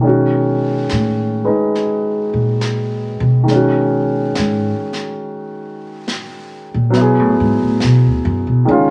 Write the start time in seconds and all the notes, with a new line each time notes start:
Already playing: B2
0.01 D#3 G#3 C#4, brush sweep
0.07 F#4
0.89 A2, snare
1.45 G#3 D#4 B4
1.75 brush sweep, snare
2.34 A#2
2.61 snare
3.20 B2
3.44 D#3 G#3
3.48 C#4, brush sweep, snare
3.54 F#4
4.35 G#2, snare
4.93 snare
5.21 brush sweep
6.08 snare
6.74 A#2
6.90 F#3 B3, brush sweep, snare
6.97 B2 E4
7.01 G#4
7.19 A2
7.40 G#2
7.63 A2
7.80 B2, snare
8.06 D2
8.25 F#2
8.47 B2
8.65 C#3 D#3 G#3 C#4, brush sweep
8.71 F4